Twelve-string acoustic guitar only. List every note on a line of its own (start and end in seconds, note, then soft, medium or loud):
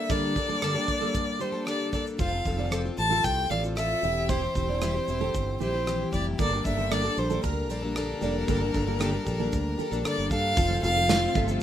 0.09 0.36 G2 medium
0.09 0.36 D3 medium
0.09 0.34 G3 medium
0.09 0.35 A#3 medium
0.09 0.37 D4 medium
0.09 0.37 A4 medium
0.35 0.49 G3 medium
0.35 0.49 A#3 medium
0.35 0.49 D4 medium
0.35 0.47 A4 medium
0.49 0.62 G3 soft
0.49 0.62 A#3 soft
0.49 0.63 D4 soft
0.49 0.62 A4 soft
0.62 0.75 G2 medium
0.62 0.76 D3 medium
0.62 0.76 G3 medium
0.62 0.76 A#3 medium
0.62 0.75 D4 medium
0.62 0.73 A4 medium
0.75 0.87 G3 soft
0.75 0.88 A#3 soft
0.75 0.89 D4 soft
0.75 0.88 A4 medium
0.88 1.01 G3 medium
0.88 1.02 A#3 medium
0.88 1.01 D4 medium
0.88 0.99 A4 medium
1.01 1.38 G3 soft
1.01 1.40 A#3 soft
1.01 1.40 D4 soft
1.01 1.40 A4 medium
1.39 1.53 G3 medium
1.39 1.53 A#3 soft
1.39 1.52 D4 medium
1.39 1.51 A4 medium
1.52 1.66 G3 soft
1.52 1.66 A#3 soft
1.52 1.66 D4 soft
1.52 1.66 A4 soft
1.66 1.93 G2 medium
1.66 1.93 D3 medium
1.66 1.91 G3 medium
1.66 1.92 A#3 medium
1.66 1.93 D4 medium
1.66 1.94 A4 medium
1.92 2.18 G3 medium
1.92 2.19 A#3 medium
1.92 2.20 D4 medium
1.92 2.20 A4 medium
2.18 2.32 F3 medium
2.18 2.33 C4 medium
2.18 2.32 F4 medium
2.18 2.30 A4 medium
2.31 2.45 C4 soft
2.31 2.46 F4 soft
2.31 2.45 A4 soft
2.44 2.58 F3 medium
2.44 2.59 C4 medium
2.44 2.58 F4 medium
2.44 2.56 A4 medium
2.57 2.70 C4 soft
2.57 2.71 F4 soft
2.57 2.71 A4 soft
2.71 2.84 F3 medium
2.71 2.85 C4 medium
2.71 2.84 F4 medium
2.71 2.82 A4 medium
2.84 2.97 C4 soft
2.84 2.98 F4 soft
2.84 2.97 A4 soft
2.97 3.10 F3 medium
2.97 3.11 C4 medium
2.97 3.10 F4 medium
2.97 3.09 A4 medium
3.10 3.50 C4 soft
3.10 3.51 F4 soft
3.10 3.50 A4 soft
3.50 3.63 F3 medium
3.50 3.64 C4 medium
3.50 3.64 F4 medium
3.50 3.62 A4 soft
3.63 3.76 C4 soft
3.63 3.77 F4 soft
3.63 3.76 A4 soft
3.77 4.02 F3 medium
3.77 4.02 C4 medium
3.77 4.04 F4 medium
3.77 4.04 A4 medium
4.02 4.28 G3 medium
4.02 4.29 C4 medium
4.02 4.29 E4 medium
4.02 4.30 G4 medium
4.29 4.42 E3 medium
4.29 4.42 G3 medium
4.29 4.43 C4 medium
4.29 4.42 E4 medium
4.29 4.40 G4 medium
4.42 4.55 C4 soft
4.42 4.56 E4 soft
4.42 4.55 G4 soft
4.55 4.68 G3 medium
4.55 4.69 C4 medium
4.55 4.69 E4 medium
4.55 4.68 G4 medium
4.69 4.81 C4 soft
4.69 4.82 E4 soft
4.69 4.82 G4 soft
4.82 4.95 E3 medium
4.82 4.95 G3 medium
4.82 4.95 C4 medium
4.82 4.95 E4 medium
4.82 4.93 G4 medium
4.95 5.08 C4 soft
4.95 5.08 E4 soft
4.95 5.08 G4 medium
5.08 5.21 G3 medium
5.08 5.21 C4 medium
5.08 5.21 E4 medium
5.08 5.20 G4 medium
5.21 5.60 C4 soft
5.21 5.61 E4 medium
5.21 5.60 G4 medium
5.60 5.73 G3 medium
5.60 5.74 C4 medium
5.60 5.73 E4 medium
5.60 5.71 G4 medium
5.73 5.86 C4 soft
5.73 5.86 E4 soft
5.73 5.86 G4 soft
5.86 6.12 E3 medium
5.86 6.11 G3 medium
5.86 6.12 C4 medium
5.86 6.13 E4 medium
5.86 6.13 G4 medium
6.12 6.39 G3 medium
6.12 6.39 C4 medium
6.12 6.40 E4 medium
6.12 6.40 G4 medium
6.39 6.52 G2 medium
6.39 6.52 D3 medium
6.39 6.52 G3 medium
6.39 6.53 A#3 medium
6.39 6.52 D4 medium
6.39 6.51 A4 medium
6.52 6.63 G3 soft
6.52 6.64 A#3 soft
6.52 6.65 D4 soft
6.52 6.65 A4 soft
6.64 6.78 G3 medium
6.64 6.78 A#3 medium
6.64 6.77 D4 medium
6.64 6.76 A4 medium
6.77 6.90 G3 soft
6.77 6.91 A#3 soft
6.77 6.91 D4 soft
6.77 6.91 A4 soft
6.91 7.04 G2 medium
6.91 7.04 D3 medium
6.91 7.04 G3 medium
6.91 7.05 A#3 medium
6.91 7.04 D4 medium
6.91 7.02 A4 medium
7.04 7.15 G3 soft
7.04 7.17 A#3 soft
7.04 7.18 D4 soft
7.04 7.17 A4 medium
7.17 7.30 G3 medium
7.17 7.31 A#3 soft
7.17 7.30 D4 soft
7.17 7.28 A4 medium
7.30 7.68 G3 soft
7.30 7.69 A#3 soft
7.30 7.70 D4 soft
7.30 7.69 A4 soft
7.69 7.83 G3 soft
7.69 7.83 A#3 medium
7.69 7.82 D4 medium
7.69 7.81 A4 medium
7.82 7.96 G3 soft
7.82 7.96 A#3 soft
7.82 7.96 D4 soft
7.82 7.96 A4 medium
7.96 8.22 G2 medium
7.96 8.22 D3 medium
7.96 8.20 G3 medium
7.96 8.21 A#3 medium
7.96 8.22 D4 medium
7.96 8.23 A4 medium
8.21 8.47 G3 medium
8.21 8.48 A#3 medium
8.21 8.48 D4 medium
8.21 8.48 A4 medium
8.47 8.61 G2 medium
8.47 8.61 D3 medium
8.47 8.61 G3 medium
8.47 8.61 A#3 medium
8.47 8.60 D4 medium
8.47 8.59 A4 medium
8.60 8.71 G3 soft
8.60 8.72 A#3 soft
8.60 8.73 D4 soft
8.60 8.74 A4 soft
8.72 8.86 G3 medium
8.72 8.86 A#3 medium
8.72 8.85 D4 medium
8.72 8.84 A4 medium
8.85 8.98 G3 soft
8.85 8.99 A#3 soft
8.85 8.99 D4 soft
8.85 8.99 A4 soft
8.98 9.13 G2 medium
8.98 9.13 D3 medium
8.98 9.13 G3 medium
8.98 9.13 A#3 medium
8.98 9.12 D4 medium
8.98 9.11 A4 medium
9.12 9.24 G3 soft
9.12 9.25 A#3 soft
9.12 9.26 D4 medium
9.12 9.26 A4 medium
9.25 9.39 G3 medium
9.25 9.39 A#3 medium
9.25 9.38 D4 medium
9.25 9.40 A4 medium
9.40 9.76 G3 soft
9.40 9.78 A#3 medium
9.40 9.79 D4 medium
9.78 9.91 G3 medium
9.78 9.92 A#3 medium
9.78 9.91 D4 medium
9.78 9.90 A4 medium
9.91 10.03 G3 soft
9.91 10.04 A#3 soft
9.91 10.04 D4 medium
9.91 10.05 A4 medium
10.03 10.30 G2 medium
10.03 10.31 D3 medium
10.03 10.29 G3 medium
10.03 10.30 A#3 medium
10.03 10.31 D4 medium
10.03 10.32 A4 medium
10.30 10.55 G3 medium
10.30 10.56 A#3 medium
10.30 10.57 D4 medium
10.30 10.57 A4 medium
10.56 10.81 F3 medium
10.56 10.82 C4 medium
10.56 10.83 F4 medium
10.56 10.84 A4 medium
10.82 11.07 F3 medium
10.82 11.08 C4 medium
10.82 11.09 F4 medium
10.82 11.09 A4 medium
11.08 11.33 F3 medium
11.08 11.34 C4 medium
11.08 11.35 F4 medium
11.08 11.36 A4 medium
11.35 11.48 F3 medium
11.35 11.49 C4 medium
11.35 11.48 F4 medium
11.35 11.47 A4 medium
11.48 11.63 C4 soft
11.48 11.63 F4 medium
11.48 11.63 A4 medium